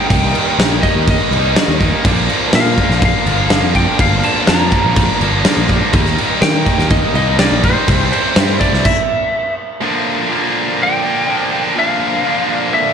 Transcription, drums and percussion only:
0.10 kick, crash
0.35 crash
0.60 snare, crash
0.83 kick, crash
1.07 kick, crash
1.32 crash
1.56 snare, crash
1.81 kick, crash
2.05 kick, crash
2.29 crash
2.53 snare, crash
2.78 kick, crash
2.91 snare
3.02 kick, crash
3.27 crash
3.50 snare, crash
3.75 kick, crash
3.99 kick, crash
4.23 crash
4.47 snare, crash
4.71 kick, crash
4.96 kick, crash
5.21 crash
5.45 snare, crash
5.69 kick, crash
5.93 kick, crash
6.06 snare
6.18 crash
6.42 snare, crash
6.66 kick, crash
6.79 snare
6.90 kick, crash
7.15 crash
7.39 snare, crash
7.63 kick, crash
7.88 kick, crash
8.13 crash
8.36 snare, crash
8.60 kick, crash
8.74 snare
8.85 kick, crash

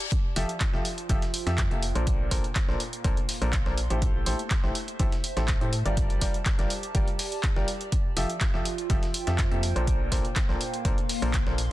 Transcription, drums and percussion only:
0.00 closed hi-hat
0.12 kick, closed hi-hat
0.36 snare, closed hi-hat, open hi-hat
0.49 closed hi-hat
0.60 kick, snare, clap, closed hi-hat
0.74 snare
0.85 closed hi-hat, open hi-hat
0.98 closed hi-hat
1.09 kick, closed hi-hat
1.22 snare, closed hi-hat
1.34 closed hi-hat, open hi-hat
1.47 snare, closed hi-hat
1.58 kick, snare, clap, closed hi-hat
1.71 closed hi-hat
1.82 closed hi-hat, open hi-hat
1.95 closed hi-hat
2.07 kick, closed hi-hat
2.31 kick, snare, closed hi-hat, open hi-hat
2.44 closed hi-hat
2.55 kick, snare, clap, closed hi-hat
2.69 snare
2.80 closed hi-hat, open hi-hat
2.93 closed hi-hat
3.04 kick, closed hi-hat
3.17 closed hi-hat
3.29 snare, open hi-hat
3.42 closed hi-hat
3.53 kick, snare, clap, closed hi-hat
3.66 snare
3.78 closed hi-hat, open hi-hat
3.90 closed hi-hat
4.02 kick, closed hi-hat
4.26 snare, closed hi-hat, open hi-hat
4.39 closed hi-hat
4.50 kick, snare, clap, closed hi-hat
4.64 snare
4.75 closed hi-hat, open hi-hat
4.88 closed hi-hat
5.00 kick, closed hi-hat
5.12 snare, closed hi-hat
5.24 closed hi-hat, open hi-hat
5.37 snare, closed hi-hat
5.48 kick, snare, clap, closed hi-hat
5.61 closed hi-hat
5.73 closed hi-hat, open hi-hat
5.86 closed hi-hat
5.97 kick, closed hi-hat
6.10 closed hi-hat
6.21 kick, snare, closed hi-hat, open hi-hat
6.34 closed hi-hat
6.46 kick, snare, clap, closed hi-hat
6.59 snare, closed hi-hat
6.70 closed hi-hat, open hi-hat
6.83 closed hi-hat
6.95 kick, closed hi-hat
7.08 closed hi-hat
7.19 snare, open hi-hat
7.32 closed hi-hat
7.43 kick, snare, clap, closed hi-hat
7.56 snare
7.68 closed hi-hat, open hi-hat
7.81 closed hi-hat
7.92 kick, closed hi-hat
8.17 snare, closed hi-hat, open hi-hat
8.30 closed hi-hat
8.41 kick, snare, clap, closed hi-hat
8.54 snare
8.65 closed hi-hat, open hi-hat
8.78 closed hi-hat
8.90 kick, closed hi-hat
9.03 snare, closed hi-hat
9.14 closed hi-hat, open hi-hat
9.27 snare, closed hi-hat
9.38 kick, snare, clap, closed hi-hat
9.52 closed hi-hat
9.63 closed hi-hat, open hi-hat
9.76 closed hi-hat
9.87 kick, closed hi-hat
10.12 kick, snare, closed hi-hat, open hi-hat
10.25 closed hi-hat
10.36 kick, snare, clap, closed hi-hat
10.49 snare
10.61 closed hi-hat, open hi-hat
10.74 closed hi-hat
10.85 kick, closed hi-hat
10.98 closed hi-hat
11.09 snare, open hi-hat
11.22 closed hi-hat
11.34 kick, snare, clap, closed hi-hat
11.47 snare
11.58 closed hi-hat, open hi-hat

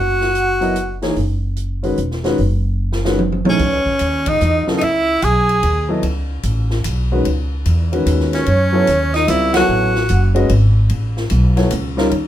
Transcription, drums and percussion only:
0.21 snare
0.35 closed hi-hat
0.61 open hi-hat
0.76 closed hi-hat
1.02 snare, open hi-hat
1.16 open hi-hat
1.57 closed hi-hat
1.83 open hi-hat
1.97 closed hi-hat
2.11 snare
2.24 snare, open hi-hat
2.38 open hi-hat
2.92 snare
3.05 snare
3.19 high tom
3.32 high tom
3.45 high tom
3.59 kick, crash
3.86 kick
3.99 hi-hat pedal, ride
4.26 kick, ride
4.40 hi-hat pedal
4.68 snare
4.81 ride
5.22 hi-hat pedal, ride
5.49 ride
5.63 ride
6.03 ride
6.43 hi-hat pedal, ride
6.71 snare
6.84 hi-hat pedal, ride
7.25 ride
7.66 hi-hat pedal, ride
7.93 ride
8.06 hi-hat pedal, ride
8.20 snare
8.33 snare, ride
8.46 ride
8.87 hi-hat pedal, ride
9.14 snare, ride
9.28 hi-hat pedal, ride
9.54 snare, ride
9.95 snare
10.09 hi-hat pedal, ride
10.36 ride
10.49 ride
10.89 ride
11.17 snare
11.30 hi-hat pedal, ride
11.57 snare, ride
11.71 hi-hat pedal, ride
11.98 snare
12.11 ride

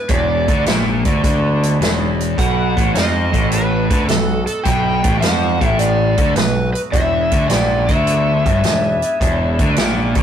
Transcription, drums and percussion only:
0.09 kick, closed hi-hat
0.48 kick, closed hi-hat
0.66 snare, closed hi-hat
1.05 kick, closed hi-hat
1.24 kick, closed hi-hat
1.63 closed hi-hat
1.82 snare, closed hi-hat
2.20 closed hi-hat
2.38 kick, closed hi-hat
2.77 kick, closed hi-hat
2.95 snare, closed hi-hat
3.34 kick, closed hi-hat
3.52 closed hi-hat
3.91 kick, closed hi-hat
4.08 snare, closed hi-hat
4.47 closed hi-hat
4.65 kick, closed hi-hat
5.04 kick, closed hi-hat
5.22 snare, closed hi-hat
5.61 kick, closed hi-hat
5.79 closed hi-hat
6.18 kick, closed hi-hat
6.36 snare, closed hi-hat
6.75 closed hi-hat
6.93 kick, closed hi-hat
7.31 kick, closed hi-hat
7.50 snare, closed hi-hat
7.88 kick, closed hi-hat
8.07 closed hi-hat
8.46 kick, closed hi-hat
8.64 snare, closed hi-hat
9.02 closed hi-hat
9.21 kick, closed hi-hat
9.59 kick, closed hi-hat
9.76 snare, closed hi-hat
10.15 kick, closed hi-hat

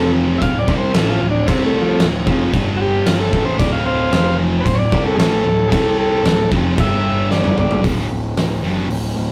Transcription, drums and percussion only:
0.42 kick, crash
0.68 kick
0.94 snare, crash
1.48 kick, crash
2.00 snare, crash
2.27 kick
2.54 kick, crash
3.06 snare, crash
3.33 kick
3.60 kick, crash
4.12 snare, crash
4.66 kick, crash
4.92 kick
5.19 snare, crash
5.72 kick, crash
6.25 snare, crash
6.52 kick
6.78 kick, crash
7.31 snare
7.44 high tom
7.58 mid tom
7.71 floor tom
7.84 kick, open hi-hat
8.37 snare, open hi-hat
8.90 open hi-hat

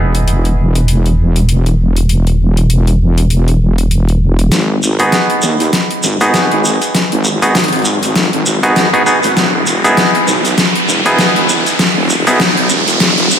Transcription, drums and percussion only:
0.15 closed hi-hat
0.28 closed hi-hat
0.45 closed hi-hat
0.75 closed hi-hat
0.88 closed hi-hat
1.06 closed hi-hat
1.36 closed hi-hat
1.49 closed hi-hat
1.66 closed hi-hat
1.97 closed hi-hat
2.09 closed hi-hat
2.27 closed hi-hat
2.57 closed hi-hat
2.70 closed hi-hat
2.87 closed hi-hat
3.18 closed hi-hat
3.30 closed hi-hat
3.48 closed hi-hat
3.78 closed hi-hat
3.91 closed hi-hat
4.09 closed hi-hat
4.39 closed hi-hat
4.52 snare, closed hi-hat, shekere
4.83 shekere
4.99 closed hi-hat, shekere
5.12 snare, closed hi-hat, shekere
5.30 closed hi-hat
5.42 shekere
5.60 closed hi-hat, shekere
5.73 snare, closed hi-hat, shekere
5.91 closed hi-hat
6.03 shekere
6.21 closed hi-hat, shekere
6.34 snare, closed hi-hat, shekere
6.51 closed hi-hat
6.65 shekere
6.82 closed hi-hat, shekere
6.95 snare, closed hi-hat, shekere
7.12 closed hi-hat
7.24 shekere
7.42 closed hi-hat, shekere
7.55 snare, closed hi-hat, shekere
7.59 closed hi-hat
7.64 closed hi-hat
7.68 closed hi-hat
7.73 closed hi-hat
7.76 closed hi-hat
7.79 closed hi-hat
7.82 closed hi-hat, shekere
8.03 closed hi-hat, shekere
8.16 snare, closed hi-hat, shekere
8.33 closed hi-hat
8.46 shekere
8.63 closed hi-hat, shekere
8.76 snare, closed hi-hat, shekere
8.94 closed hi-hat
9.07 shekere
9.23 closed hi-hat, shekere
9.37 snare, closed hi-hat, shekere
9.67 shekere
9.85 closed hi-hat, shekere
9.97 snare, closed hi-hat, shekere
10.15 closed hi-hat
10.28 shekere
10.45 closed hi-hat, shekere
10.57 snare, closed hi-hat, shekere
10.75 closed hi-hat
10.89 shekere
11.06 closed hi-hat, shekere
11.19 snare, closed hi-hat, shekere
11.36 closed hi-hat
11.49 shekere
11.66 closed hi-hat, shekere
11.79 snare, closed hi-hat, shekere
12.10 shekere
12.27 closed hi-hat, shekere
12.40 snare, closed hi-hat, shekere
12.57 closed hi-hat
12.70 shekere
12.88 closed hi-hat, shekere
13.00 snare, closed hi-hat, shekere
13.18 closed hi-hat
13.31 shekere

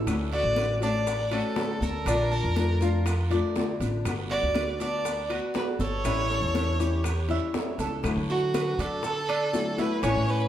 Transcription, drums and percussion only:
0.07 high bongo, high conga, high timbale, long guiro, claves, maracas
0.32 high conga, high timbale, maracas
0.56 high bongo, high conga, high timbale, low timbale, short guiro, claves, maracas
0.82 high conga, high timbale, short guiro, maracas
1.07 high bongo, high conga, high timbale, long guiro, maracas
1.32 high conga, high timbale, claves, maracas
1.56 high bongo, low bongo, high conga, high timbale, low timbale, short guiro, maracas
1.82 high conga, short guiro, maracas
2.06 high bongo, high conga, high timbale, long guiro, claves, maracas
2.32 high bongo, high conga, maracas
2.56 high bongo, high conga, high timbale, low timbale, short guiro, maracas
2.81 high bongo, high conga, short guiro, maracas
3.06 high bongo, high conga, high timbale, long guiro, claves, maracas
3.31 high conga, high timbale, maracas
3.56 high bongo, low bongo, high conga, low timbale, short guiro, maracas
3.81 high bongo, high conga, high timbale, short guiro, maracas
4.05 high bongo, high conga, high timbale, long guiro, claves, maracas
4.30 high conga, high timbale, maracas
4.54 high bongo, high conga, high timbale, low timbale, short guiro, claves, maracas
4.80 high conga, high timbale, short guiro, maracas
5.05 high bongo, high conga, high timbale, long guiro, maracas
5.30 high conga, high timbale, claves, maracas
5.54 high bongo, low bongo, high conga, high timbale, low timbale, short guiro, maracas
5.80 high conga, short guiro, maracas
6.04 high bongo, high conga, high timbale, long guiro, claves, maracas
6.30 high bongo, high conga, maracas
6.55 high bongo, high conga, high timbale, low timbale, short guiro, maracas
6.79 high bongo, high conga, short guiro, maracas
7.04 high bongo, high conga, high timbale, long guiro, claves, maracas
7.29 high conga, high timbale, maracas
7.54 high bongo, low bongo, high conga, low timbale, short guiro, maracas
7.79 high bongo, high conga, high timbale, short guiro, maracas
8.04 high bongo, high conga, high timbale, long guiro, claves, maracas
8.29 high bongo, high conga, maracas
8.54 high bongo, high conga, high timbale, short guiro, claves, maracas
8.79 high bongo, high conga, high timbale, short guiro, maracas
9.03 high bongo, high conga, long guiro, maracas
9.29 high conga, high timbale, claves, maracas
9.53 high bongo, low bongo, high conga, short guiro, maracas
9.78 high bongo, high conga, high timbale, short guiro, maracas
10.03 high bongo, high timbale, long guiro, claves, maracas
10.28 high bongo, high conga, maracas

